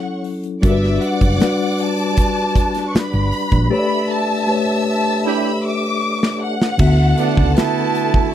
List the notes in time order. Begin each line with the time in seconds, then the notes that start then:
Already playing: F#3 C#4 E4 A4 C#5 F#5 C#6
0.24 open hi-hat
0.43 closed hi-hat
0.62 G1 G3 D4 F#4 A#4 B4 D5 E5 D6, kick, closed hi-hat
0.71 B4
0.84 snare
1.02 F#5, closed hi-hat
1.21 F#1, kick, closed hi-hat
1.39 G3 D4 F#4 B4, snare, closed hi-hat
1.60 closed hi-hat
1.78 A5, closed hi-hat
1.98 closed hi-hat
2.17 kick, closed hi-hat
2.36 closed hi-hat
2.56 kick, closed hi-hat
2.75 snare, closed hi-hat
2.88 C#6
2.95 B5, muted fingered electric bass stroke, snare, closed hi-hat
3.13 G1, closed hi-hat
3.32 open hi-hat
3.52 A#1, kick, closed hi-hat
3.70 A3 D4 G4 B4 C#5 E5 B5 E6
3.79 D5
4.10 A5
4.47 A3 G4 B4 C#5
4.88 A5
5.25 D4 E4 G4 B5
5.65 D6
6.23 snare
6.42 F#5
6.62 snare
6.77 D2 D3 B3 E4 F#4 A4 E5 A5, kick, crash
7.18 A3 B3 D4, closed hi-hat
7.37 C#2, kick
7.56 A3 B3 E4 A5, snare, closed hi-hat
7.95 closed hi-hat
8.14 kick